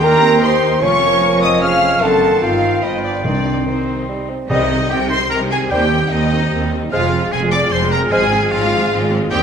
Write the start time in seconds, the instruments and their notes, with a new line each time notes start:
Already playing: cello section D#2, double bass section D#2, bassoon D#3, clarinet G5, oboe C6
0.02 viola section D4 G4, french horn section A#4, violin section A#5, flute A#5
0.22 viola section C4
0.42 viola section D#4, french horn section C5, violin section C6, flute C6
0.82 double bass section F1, cello section F2, bassoon F3, viola section C#4 F4, french horn section C#5, clarinet G#5, oboe C#6, violin section C#6, flute C#6
1.03 viola section A#4
1.22 viola section A#3
1.42 viola section C4, french horn section D#5, violin section D#6, flute D#6
1.61 viola section C#4 G#4, french horn section F5, violin section F6, flute F6
2.01 double bass section F#1, cello section F#2, bassoon D#3, viola section C4 D#4, french horn section A4, clarinet F#5, flute A5, violin section A5, oboe C6
2.41 double bass section G1, cello section G2, viola section C4 D#4, french horn section F4, flute F5, violin section F5, clarinet G5
2.82 double bass section G1, cello section G2, bassoon F3, viola section B3 F4, french horn section D#4, violin section D#5, flute D#5, oboe B5
3.03 french horn section D4, flute D5, violin section D5
3.23 double bass section C2, timpani C3, cello section C3, bassoon D#3, viola section C4 D#4, french horn section D4, violin section D5, flute D5, oboe C6
3.65 bassoon D#3, french horn section C4, viola section C4 D#4, flute C5, violin section C5
4.09 bassoon G3
4.30 bassoon C4
4.49 double bass section C2, cello section C3, timpani C3, viola section D#3 C4, bassoon G3, french horn section C4 G4, violin section D#4 D#5, oboe D#4, clarinet D#5, flute D#6
4.61 viola section G3 D#4
4.71 viola section D#3 C4
4.81 viola section G3 D#4
4.90 double bass section C2, cello section C3, viola section D#3 C4, oboe G4, violin section G4 G5
5.01 viola section G3 D#4
5.10 viola section D#3 C4, oboe C5, violin section C5 C6
5.22 viola section G3 D#4
5.30 double bass section C2, cello section C3, viola section D#3 C4, oboe A#4, violin section A#4 A#5
5.42 viola section G3 D#4
5.49 viola section D#3 C4, violin section G#4 G#5, oboe G#4
5.62 viola section G3 D#4
5.70 double bass section D#2, cello section D#2, viola section D#3 C4, bassoon G3, violin section G4 G5, oboe G4, clarinet C5, flute G6
5.83 viola section G3 D#4
5.92 viola section D#3 C4
6.02 viola section G3 D#4
6.11 cello section D#2, double bass section D#2, viola section D#3 C4, violin section D#4 D#5, oboe D#4
6.22 viola section G3 D#4
6.33 viola section D#3 C4
6.43 viola section G3 D#4
6.52 double bass section D#2, cello section D#2, viola section D#3 C4
6.63 viola section G3 D#4
6.73 viola section D#3 C4
6.83 viola section G3 D#4
6.91 double bass section F1, cello section F2, viola section F3 C4, bassoon G#3, french horn section C4 G#4, violin section F4 F5, oboe F4, clarinet C5, flute F6
7.02 viola section G#3 F4
7.13 viola section F3 C4
7.24 viola section G#3 F4
7.32 double bass section F1, cello section F2, viola section F3 C4, violin section G#4 G#5, oboe G#4
7.42 viola section G#3 F4
7.51 viola section F3 C4, oboe D5, violin section D5 D6
7.62 viola section G#3 F4
7.71 double bass section F1, cello section F2, viola section F3 C4, violin section C5 C6, oboe C5
7.83 viola section G#3 F4
7.91 viola section F3 C4, violin section A#4 A#5, oboe A#4
8.02 viola section G#3 F4
8.11 double bass section G#1, cello section G#2, viola section F3 C4, bassoon G#3, oboe G#4, violin section G#4 G#5, clarinet C5, flute F6
8.22 viola section G#3 F4
8.32 viola section F3 C4
8.42 viola section G#3 F4
8.51 double bass section G#1, cello section G#2, viola section F3 C4, violin section F4 F5, oboe F4
8.62 viola section G#3 F4
8.72 viola section F3 C4
8.82 viola section G#3 F4
8.91 double bass section G#1, cello section G#2, viola section F3 C4
9.02 viola section G#3 F4
9.12 viola section F3 C4
9.23 viola section G#3 F4
9.30 double bass section D#2, cello section D#2, viola section D#3 C4, bassoon G3, french horn section C4 G4, oboe G4, violin section G4 G5, clarinet C5, flute D#6